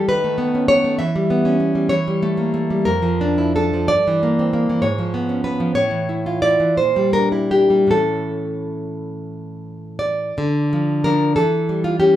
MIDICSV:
0, 0, Header, 1, 2, 480
1, 0, Start_track
1, 0, Tempo, 619195
1, 53, Time_signature, 6, 3, 24, 8
1, 1973, Tempo, 678733
1, 2933, Tempo, 625000
1, 4373, Tempo, 668151
1, 4853, Tempo, 710059
1, 5333, Tempo, 763359
1, 5813, Tempo, 820793
1, 7253, Tempo, 648649
1, 8570, End_track
2, 0, Start_track
2, 0, Title_t, "Nylon-string guitar"
2, 0, Program_c, 0, 24
2, 67, Note_on_c, 0, 71, 81
2, 72, Note_on_c, 0, 51, 58
2, 187, Note_on_c, 0, 57, 48
2, 294, Note_on_c, 0, 59, 53
2, 424, Note_on_c, 0, 61, 41
2, 524, Note_off_c, 0, 59, 0
2, 525, Note_off_c, 0, 71, 0
2, 530, Note_on_c, 0, 73, 96
2, 534, Note_on_c, 0, 59, 52
2, 645, Note_off_c, 0, 57, 0
2, 654, Note_on_c, 0, 57, 47
2, 761, Note_off_c, 0, 73, 0
2, 764, Note_on_c, 0, 76, 79
2, 767, Note_off_c, 0, 51, 0
2, 773, Note_on_c, 0, 52, 58
2, 777, Note_off_c, 0, 57, 0
2, 777, Note_off_c, 0, 59, 0
2, 783, Note_off_c, 0, 61, 0
2, 896, Note_on_c, 0, 55, 47
2, 1010, Note_on_c, 0, 59, 48
2, 1125, Note_on_c, 0, 61, 45
2, 1232, Note_off_c, 0, 59, 0
2, 1241, Note_on_c, 0, 59, 46
2, 1348, Note_off_c, 0, 55, 0
2, 1357, Note_on_c, 0, 55, 37
2, 1454, Note_off_c, 0, 76, 0
2, 1465, Note_off_c, 0, 52, 0
2, 1468, Note_on_c, 0, 73, 87
2, 1473, Note_on_c, 0, 52, 59
2, 1482, Note_off_c, 0, 55, 0
2, 1483, Note_off_c, 0, 59, 0
2, 1484, Note_off_c, 0, 61, 0
2, 1609, Note_on_c, 0, 55, 51
2, 1725, Note_on_c, 0, 57, 50
2, 1841, Note_on_c, 0, 58, 39
2, 1958, Note_off_c, 0, 57, 0
2, 1968, Note_on_c, 0, 57, 53
2, 2077, Note_off_c, 0, 55, 0
2, 2086, Note_on_c, 0, 55, 43
2, 2163, Note_off_c, 0, 73, 0
2, 2172, Note_off_c, 0, 52, 0
2, 2191, Note_on_c, 0, 70, 75
2, 2196, Note_off_c, 0, 58, 0
2, 2198, Note_off_c, 0, 57, 0
2, 2200, Note_off_c, 0, 55, 0
2, 2201, Note_on_c, 0, 41, 56
2, 2311, Note_on_c, 0, 53, 45
2, 2443, Note_on_c, 0, 62, 51
2, 2563, Note_on_c, 0, 64, 42
2, 2662, Note_off_c, 0, 70, 0
2, 2683, Note_off_c, 0, 62, 0
2, 2686, Note_off_c, 0, 64, 0
2, 2688, Note_on_c, 0, 69, 68
2, 2692, Note_on_c, 0, 62, 47
2, 2806, Note_off_c, 0, 53, 0
2, 2815, Note_on_c, 0, 53, 41
2, 2911, Note_off_c, 0, 41, 0
2, 2918, Note_on_c, 0, 74, 91
2, 2924, Note_off_c, 0, 69, 0
2, 2927, Note_on_c, 0, 43, 55
2, 2934, Note_off_c, 0, 53, 0
2, 2936, Note_off_c, 0, 62, 0
2, 3064, Note_on_c, 0, 52, 51
2, 3183, Note_on_c, 0, 58, 52
2, 3308, Note_on_c, 0, 60, 45
2, 3408, Note_off_c, 0, 58, 0
2, 3417, Note_on_c, 0, 58, 55
2, 3532, Note_off_c, 0, 52, 0
2, 3542, Note_on_c, 0, 52, 43
2, 3618, Note_off_c, 0, 74, 0
2, 3630, Note_off_c, 0, 43, 0
2, 3637, Note_on_c, 0, 73, 74
2, 3644, Note_on_c, 0, 44, 50
2, 3654, Note_off_c, 0, 58, 0
2, 3657, Note_off_c, 0, 52, 0
2, 3658, Note_off_c, 0, 60, 0
2, 3764, Note_on_c, 0, 53, 42
2, 3883, Note_on_c, 0, 59, 44
2, 4000, Note_on_c, 0, 61, 43
2, 4099, Note_off_c, 0, 73, 0
2, 4106, Note_off_c, 0, 59, 0
2, 4114, Note_on_c, 0, 71, 76
2, 4115, Note_on_c, 0, 59, 43
2, 4228, Note_off_c, 0, 53, 0
2, 4237, Note_on_c, 0, 53, 42
2, 4345, Note_off_c, 0, 44, 0
2, 4349, Note_off_c, 0, 71, 0
2, 4352, Note_on_c, 0, 73, 83
2, 4355, Note_off_c, 0, 53, 0
2, 4358, Note_on_c, 0, 45, 58
2, 4366, Note_off_c, 0, 59, 0
2, 4368, Note_off_c, 0, 61, 0
2, 4469, Note_on_c, 0, 52, 48
2, 4598, Note_on_c, 0, 64, 47
2, 4722, Note_on_c, 0, 65, 42
2, 4823, Note_off_c, 0, 73, 0
2, 4828, Note_off_c, 0, 64, 0
2, 4834, Note_on_c, 0, 74, 82
2, 4836, Note_on_c, 0, 64, 49
2, 4949, Note_off_c, 0, 52, 0
2, 4954, Note_off_c, 0, 45, 0
2, 4957, Note_on_c, 0, 52, 42
2, 5070, Note_off_c, 0, 74, 0
2, 5075, Note_on_c, 0, 72, 67
2, 5081, Note_off_c, 0, 64, 0
2, 5082, Note_off_c, 0, 52, 0
2, 5084, Note_off_c, 0, 65, 0
2, 5087, Note_on_c, 0, 46, 50
2, 5202, Note_on_c, 0, 55, 41
2, 5314, Note_off_c, 0, 72, 0
2, 5317, Note_on_c, 0, 70, 73
2, 5326, Note_on_c, 0, 62, 41
2, 5434, Note_off_c, 0, 70, 0
2, 5436, Note_on_c, 0, 64, 36
2, 5553, Note_off_c, 0, 62, 0
2, 5556, Note_on_c, 0, 67, 64
2, 5560, Note_on_c, 0, 62, 42
2, 5668, Note_off_c, 0, 55, 0
2, 5676, Note_on_c, 0, 55, 36
2, 5778, Note_off_c, 0, 46, 0
2, 5781, Note_on_c, 0, 45, 48
2, 5788, Note_on_c, 0, 52, 39
2, 5795, Note_off_c, 0, 62, 0
2, 5797, Note_off_c, 0, 67, 0
2, 5798, Note_on_c, 0, 61, 40
2, 5803, Note_off_c, 0, 64, 0
2, 5805, Note_on_c, 0, 69, 70
2, 5806, Note_off_c, 0, 55, 0
2, 7000, Note_off_c, 0, 69, 0
2, 7024, Note_on_c, 0, 74, 72
2, 7214, Note_off_c, 0, 45, 0
2, 7217, Note_off_c, 0, 52, 0
2, 7222, Note_off_c, 0, 61, 0
2, 7251, Note_on_c, 0, 50, 65
2, 7510, Note_on_c, 0, 53, 54
2, 7714, Note_off_c, 0, 74, 0
2, 7740, Note_off_c, 0, 53, 0
2, 7742, Note_on_c, 0, 70, 89
2, 7749, Note_on_c, 0, 53, 47
2, 7755, Note_on_c, 0, 62, 54
2, 7963, Note_off_c, 0, 50, 0
2, 7963, Note_off_c, 0, 53, 0
2, 7967, Note_off_c, 0, 62, 0
2, 7973, Note_off_c, 0, 70, 0
2, 7976, Note_on_c, 0, 69, 59
2, 7983, Note_on_c, 0, 52, 57
2, 8222, Note_on_c, 0, 55, 46
2, 8317, Note_off_c, 0, 69, 0
2, 8334, Note_on_c, 0, 65, 74
2, 8443, Note_off_c, 0, 55, 0
2, 8445, Note_off_c, 0, 65, 0
2, 8448, Note_on_c, 0, 67, 77
2, 8452, Note_on_c, 0, 55, 47
2, 8456, Note_on_c, 0, 61, 52
2, 8570, Note_off_c, 0, 52, 0
2, 8570, Note_off_c, 0, 55, 0
2, 8570, Note_off_c, 0, 61, 0
2, 8570, Note_off_c, 0, 67, 0
2, 8570, End_track
0, 0, End_of_file